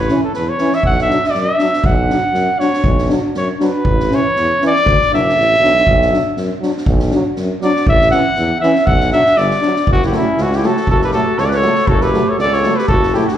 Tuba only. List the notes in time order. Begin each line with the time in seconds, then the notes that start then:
Already playing: A1
0.37 E2
0.86 B1
1.35 F#2
1.85 B1
2.33 F#2
2.86 B1
3.36 F#2
3.86 A1
4.36 E2
4.85 D2
5.10 F#1
5.36 A1
5.60 B1
5.86 B1
6.36 F#2
6.86 B1
7.37 F#2
7.87 A1
8.37 E2
8.86 B1
9.37 G1
9.88 F#1
10.37 C#2
10.88 F#1
11.38 C#2
11.87 F#1
12.38 C#2
12.89 F#1